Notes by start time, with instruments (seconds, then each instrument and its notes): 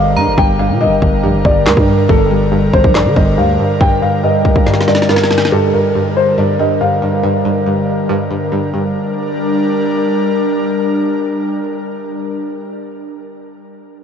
Already playing: 808-style bass G1, synth pluck G2, analog synth pad D3 G3 A#4, grand piano F5
0.16 synth pluck G2, 808-style bass G2, synth bell A#5
0.27 808-style bass G1
0.38 808-style bass G1, synth pluck G2, grand piano G5, kick
0.59 synth pluck G2, grand piano F5
0.70 808-style bass A#2
0.81 synth pluck G2, grand piano D#5
0.86 808-style bass G1
1.02 808-style bass G1, kick
1.23 808-style bass A#1, synth pluck G2
1.34 808-style bass G1
1.45 808-style bass G1, synth pluck G2, grand piano D5, kick
1.66 808-style bass D2, synth pluck G2, grand piano A#4, snare, clap
1.77 808-style bass G2, kick
1.88 synth pluck G2
2.09 808-style bass G1, synth pluck G2, grand piano A4, kick
2.31 synth pluck G2
2.52 synth pluck G2
2.74 808-style bass G1, grand piano C5, kick
2.84 808-style bass A#1, kick
2.95 synth pluck G2, grand piano D5, snare, clap
3.06 808-style bass D3
3.16 808-style bass G1, synth pluck G2, grand piano D#5, kick
3.38 808-style bass D2, synth pluck G2, grand piano F5
3.59 synth pluck G2
3.81 synth pluck G2, grand piano G5, kick
4.02 synth pluck G2, grand piano F5
4.23 synth pluck G2, grand piano D#5
4.45 kick
4.56 kick
4.66 synth pluck G2, snare
4.74 snare
4.81 snare
4.88 synth pluck G2, grand piano D5, snare
4.95 snare
5.02 snare
5.09 synth pluck G2, grand piano A#4, snare
5.16 snare
5.24 snare
5.31 synth pluck G2, snare
5.38 snare
5.45 snare
5.52 synth pluck G2, grand piano A4
5.74 synth pluck G2, grand piano A#4
5.95 synth pluck G2
6.17 grand piano C5
6.38 synth pluck G2, grand piano D5
6.59 synth pluck G2, grand piano D#5
6.81 synth pluck G2, grand piano F5
7.02 synth pluck G2
7.23 synth pluck G2
7.45 synth pluck G2
7.66 synth pluck G2
8.09 synth pluck G2
8.31 synth pluck G2
8.52 synth pluck G2
8.74 synth pluck G2
8.95 analog synth pad G3 D4 A#4